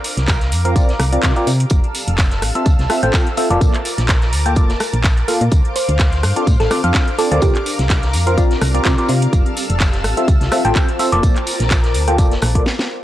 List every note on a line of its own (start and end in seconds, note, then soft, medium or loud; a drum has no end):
0.00 2.48 C4 medium
0.00 0.57 D4 medium
0.00 2.47 G4 medium
0.00 1.69 A#4 medium
0.00 1.67 F5 medium
0.00 0.57 A5 medium
0.00 1.69 D6 medium
0.04 open hi-hat loud
0.04 tambourine medium
0.17 0.53 C2 medium
0.17 snare soft
0.17 closed hi-hat soft
0.27 2.48 D5 medium
0.27 kick loud
0.27 snare loud
0.27 clap loud
0.27 closed hi-hat soft
0.27 tambourine medium
0.41 snare medium
0.41 closed hi-hat soft
0.52 0.77 F2 medium
0.52 open hi-hat loud
0.52 tambourine medium
0.65 0.74 C4 medium
0.65 0.74 F4 medium
0.65 0.74 A#4 medium
0.65 0.74 F5 medium
0.65 closed hi-hat medium
0.76 0.94 A#1 medium
0.76 0.91 C4 medium
0.76 0.91 F4 medium
0.76 0.91 A#4 medium
0.76 0.91 D5 medium
0.76 kick loud
0.76 closed hi-hat soft
0.76 tambourine medium
0.89 snare soft
0.89 closed hi-hat soft
0.99 1.18 C2 medium
0.99 cross-stick medium
0.99 open hi-hat loud
0.99 tambourine medium
1.12 1.22 C4 medium
1.12 1.22 F4 medium
1.12 1.22 A#4 medium
1.12 1.22 D5 medium
1.12 closed hi-hat medium
1.23 1.33 C3 loud
1.23 1.34 C4 medium
1.23 1.34 D5 medium
1.23 kick loud
1.23 snare loud
1.23 clap loud
1.23 closed hi-hat medium
1.23 tambourine medium
1.36 1.50 C4 medium
1.36 1.50 F4 medium
1.36 1.50 A#4 medium
1.36 1.50 D5 medium
1.36 closed hi-hat soft
1.47 1.65 C3 loud
1.47 open hi-hat loud
1.47 tambourine medium
1.60 closed hi-hat medium
1.70 1.81 F1 medium
1.70 4.24 F4 medium
1.70 3.59 A4 medium
1.70 3.59 F5 medium
1.70 3.59 E6 medium
1.70 kick loud
1.70 closed hi-hat medium
1.70 tambourine medium
1.84 closed hi-hat soft
1.95 4.38 C5 medium
1.95 open hi-hat loud
1.95 tambourine medium
2.08 2.44 F1 medium
2.08 closed hi-hat soft
2.18 kick loud
2.18 snare loud
2.18 clap loud
2.18 closed hi-hat soft
2.18 tambourine medium
2.31 snare soft
2.31 closed hi-hat soft
2.40 2.52 A1 medium
2.40 4.38 G5 medium
2.40 cross-stick medium
2.40 open hi-hat loud
2.40 tambourine medium
2.55 2.69 C4 medium
2.55 2.69 F4 medium
2.55 2.69 A4 medium
2.55 2.69 E5 medium
2.55 4.38 A5 medium
2.55 closed hi-hat soft
2.66 2.76 D2 medium
2.66 kick loud
2.66 closed hi-hat soft
2.66 tambourine medium
2.79 2.87 C2 medium
2.79 snare soft
2.79 closed hi-hat soft
2.90 3.01 C4 medium
2.90 3.01 F4 medium
2.90 3.01 A4 medium
2.90 3.01 E5 medium
2.90 cross-stick medium
2.90 open hi-hat loud
2.90 tambourine medium
3.03 3.11 A1 medium
3.03 3.27 C4 medium
3.03 3.27 F4 medium
3.03 3.27 A4 medium
3.03 3.27 G5 medium
3.03 closed hi-hat soft
3.13 kick loud
3.13 snare loud
3.13 clap loud
3.13 closed hi-hat soft
3.13 tambourine medium
3.27 closed hi-hat soft
3.37 3.49 C4 medium
3.37 3.49 F4 medium
3.37 3.49 A4 medium
3.37 3.49 E5 medium
3.37 open hi-hat loud
3.37 tambourine medium
3.50 3.59 F1 medium
3.50 3.74 A#3 medium
3.50 3.74 F4 medium
3.50 3.74 A4 medium
3.50 3.74 D5 loud
3.50 closed hi-hat soft
3.61 3.71 A#1 loud
3.61 5.50 A#4 medium
3.61 5.52 A#4 medium
3.61 5.50 A5 medium
3.61 5.50 D6 medium
3.61 kick loud
3.61 closed hi-hat soft
3.61 tambourine medium
3.73 10.09 F5 medium
3.73 clap soft
3.73 closed hi-hat soft
3.81 6.28 C6 medium
3.81 open hi-hat loud
3.86 tambourine medium
3.98 4.34 A#1 medium
3.98 snare soft
3.98 closed hi-hat soft
4.09 kick loud
4.09 snare loud
4.09 clap loud
4.09 closed hi-hat soft
4.09 tambourine medium
4.22 snare soft
4.22 closed hi-hat soft
4.29 4.58 D2 medium
4.29 6.28 D6 medium
4.29 open hi-hat loud
4.33 tambourine medium
4.46 4.55 A#3 medium
4.46 4.55 F4 medium
4.46 4.55 A4 medium
4.46 4.55 G5 medium
4.46 closed hi-hat soft
4.56 4.75 F1 medium
4.56 4.72 A#3 medium
4.56 4.72 A4 medium
4.56 4.72 D5 medium
4.56 kick loud
4.56 closed hi-hat soft
4.56 tambourine medium
4.69 snare soft
4.69 closed hi-hat soft
4.80 cross-stick medium
4.80 open hi-hat loud
4.80 tambourine medium
4.93 5.24 A#1 medium
4.93 closed hi-hat soft
5.04 kick loud
5.04 snare loud
5.04 clap loud
5.04 closed hi-hat soft
5.04 tambourine medium
5.17 closed hi-hat soft
5.28 5.44 A#3 medium
5.28 5.44 F4 medium
5.28 5.44 A4 medium
5.28 5.44 F5 medium
5.28 open hi-hat loud
5.28 tambourine medium
5.41 5.49 A#2 medium
5.41 closed hi-hat soft
5.52 5.62 D2 loud
5.52 8.19 D4 medium
5.52 7.40 C5 medium
5.52 7.40 F5 medium
5.52 9.29 D6 medium
5.52 kick loud
5.52 closed hi-hat soft
5.52 tambourine medium
5.65 closed hi-hat soft
5.76 5.90 C5 medium
5.76 open hi-hat loud
5.76 tambourine medium
5.89 6.25 D2 medium
5.89 closed hi-hat soft
5.99 8.19 A5 medium
5.99 kick loud
5.99 snare loud
5.99 clap loud
5.99 closed hi-hat soft
5.99 tambourine medium
6.13 snare soft
6.13 closed hi-hat soft
6.23 6.33 G2 medium
6.23 cross-stick medium
6.23 open hi-hat loud
6.23 tambourine medium
6.36 6.50 C4 medium
6.36 6.50 F4 medium
6.36 6.50 A4 medium
6.36 6.50 D5 medium
6.36 closed hi-hat soft
6.47 6.57 A2 medium
6.47 kick loud
6.47 closed hi-hat soft
6.47 tambourine medium
6.60 6.68 A1 medium
6.60 6.72 A4 medium
6.60 snare medium
6.60 closed hi-hat soft
6.71 6.82 C4 medium
6.71 6.82 F4 medium
6.71 6.82 A4 medium
6.71 6.82 D5 medium
6.71 cross-stick medium
6.71 open hi-hat loud
6.71 tambourine medium
6.84 6.92 F2 medium
6.84 7.08 C4 medium
6.84 7.08 F4 medium
6.84 7.08 A4 medium
6.84 7.08 F5 medium
6.84 closed hi-hat soft
6.94 kick loud
6.94 snare loud
6.94 clap loud
6.94 closed hi-hat soft
6.94 tambourine medium
7.08 closed hi-hat soft
7.19 7.30 C4 medium
7.19 7.30 F4 medium
7.19 7.27 A4 medium
7.19 7.30 A4 medium
7.19 7.30 D5 medium
7.19 open hi-hat loud
7.19 tambourine medium
7.31 7.40 D2 medium
7.31 7.55 C4 medium
7.31 7.55 F4 medium
7.31 7.38 A4 medium
7.31 7.55 A#4 medium
7.31 7.55 D5 loud
7.31 closed hi-hat soft
7.42 7.52 C2 loud
7.42 10.09 C4 medium
7.42 7.56 G4 medium
7.42 9.31 A#4 medium
7.42 11.19 F5 medium
7.42 kick loud
7.42 closed hi-hat soft
7.42 tambourine medium
7.48 10.09 G4 medium
7.48 10.09 D5 medium
7.55 clap soft
7.55 closed hi-hat soft
7.66 open hi-hat loud
7.66 tambourine medium
7.79 8.15 C2 medium
7.79 snare soft
7.79 closed hi-hat soft
7.90 kick loud
7.90 snare loud
7.90 clap loud
7.90 closed hi-hat soft
7.90 tambourine medium
8.03 snare medium
8.03 closed hi-hat soft
8.13 8.39 F2 medium
8.13 open hi-hat loud
8.13 tambourine medium
8.27 8.36 C4 medium
8.27 8.36 F4 medium
8.27 8.36 A#4 medium
8.27 8.36 F5 medium
8.27 closed hi-hat soft
8.37 8.56 A#1 medium
8.37 8.53 C4 medium
8.37 8.53 F4 medium
8.37 8.51 F4 medium
8.37 8.53 A#4 medium
8.37 8.53 D5 medium
8.37 kick loud
8.37 closed hi-hat medium
8.37 tambourine medium
8.51 snare soft
8.51 closed hi-hat soft
8.61 8.80 C2 medium
8.61 cross-stick medium
8.61 open hi-hat loud
8.61 tambourine medium
8.74 8.84 C4 medium
8.74 8.84 F4 medium
8.74 8.84 A#4 medium
8.74 8.84 D5 medium
8.74 closed hi-hat medium
8.85 8.95 C3 loud
8.85 8.96 C4 medium
8.85 8.99 F4 medium
8.85 8.96 D5 medium
8.85 kick loud
8.85 snare loud
8.85 clap loud
8.85 closed hi-hat medium
8.85 tambourine medium
8.98 9.12 C4 medium
8.98 9.12 F4 medium
8.98 9.12 A#4 medium
8.98 9.12 D5 medium
8.98 closed hi-hat soft
9.08 9.27 C3 medium
9.08 9.38 F4 medium
9.08 open hi-hat loud
9.08 tambourine medium
9.22 closed hi-hat medium
9.33 9.43 F1 loud
9.33 11.98 F4 medium
9.33 11.21 A4 medium
9.33 11.21 E6 medium
9.33 kick loud
9.33 closed hi-hat medium
9.33 tambourine medium
9.46 12.00 A5 medium
9.46 closed hi-hat soft
9.57 open hi-hat medium
9.57 tambourine medium
9.66 10.06 F1 medium
9.66 12.00 C5 medium
9.66 closed hi-hat soft
9.80 kick loud
9.80 snare loud
9.80 clap loud
9.80 closed hi-hat medium
9.80 tambourine medium
9.90 12.00 G5 medium
9.90 snare soft
9.90 closed hi-hat soft
10.04 10.14 A1 medium
10.04 cross-stick medium
10.04 open hi-hat loud
10.04 tambourine medium
10.17 10.31 C4 medium
10.17 10.31 F4 medium
10.17 10.31 A4 medium
10.17 10.31 E5 medium
10.17 closed hi-hat medium
10.28 10.38 D2 loud
10.28 kick loud
10.28 closed hi-hat medium
10.28 tambourine medium
10.41 10.49 C2 medium
10.41 snare soft
10.41 closed hi-hat soft
10.52 10.63 C4 medium
10.52 10.63 F4 medium
10.52 10.63 A4 medium
10.52 10.63 E5 medium
10.52 cross-stick medium
10.52 open hi-hat loud
10.52 tambourine medium
10.65 10.73 A1 medium
10.65 10.89 C4 medium
10.65 10.89 F4 medium
10.65 10.89 A4 medium
10.65 10.89 G5 loud
10.65 closed hi-hat medium
10.75 kick loud
10.75 clap loud
10.75 closed hi-hat medium
10.75 tambourine medium
10.89 closed hi-hat soft
10.99 11.10 C4 medium
10.99 11.10 F4 medium
10.99 11.10 A4 medium
10.99 11.10 E5 medium
10.99 open hi-hat loud
10.99 tambourine medium
11.12 11.21 F1 medium
11.12 11.36 A#3 loud
11.12 11.36 F4 medium
11.12 11.36 A4 medium
11.12 11.36 D5 loud
11.12 closed hi-hat medium
11.23 11.33 A#1 loud
11.23 12.65 A#4 medium
11.23 12.66 A#4 medium
11.23 12.65 A5 medium
11.23 12.65 D6 medium
11.23 kick loud
11.23 closed hi-hat medium
11.23 tambourine medium
11.36 clap soft
11.36 closed hi-hat soft
11.47 open hi-hat loud
11.47 tambourine medium
11.55 12.66 F5 medium
11.60 11.96 A#1 medium
11.60 snare soft
11.60 closed hi-hat medium
11.71 kick loud
11.71 snare loud
11.71 clap loud
11.71 closed hi-hat medium
11.71 tambourine medium
11.83 12.66 D6 medium
11.83 snare medium
11.83 closed hi-hat soft
11.94 12.20 D2 medium
11.94 open hi-hat loud
11.94 tambourine medium
12.08 12.17 A#3 medium
12.08 12.17 F4 medium
12.08 12.17 A4 medium
12.08 12.17 G5 medium
12.08 closed hi-hat medium
12.18 12.37 F1 medium
12.18 12.34 A#3 medium
12.18 12.34 F4 medium
12.18 12.34 A4 medium
12.18 12.34 D5 medium
12.18 kick loud
12.18 closed hi-hat medium
12.18 tambourine medium
12.32 snare soft
12.32 closed hi-hat soft
12.42 12.61 A#1 medium
12.42 cross-stick medium
12.42 open hi-hat loud
12.42 tambourine medium
12.55 12.65 A#3 medium
12.55 12.65 F4 medium
12.55 12.65 A4 medium
12.55 12.64 D5 medium
12.55 kick medium
12.55 closed hi-hat medium
12.66 snare medium
12.79 snare medium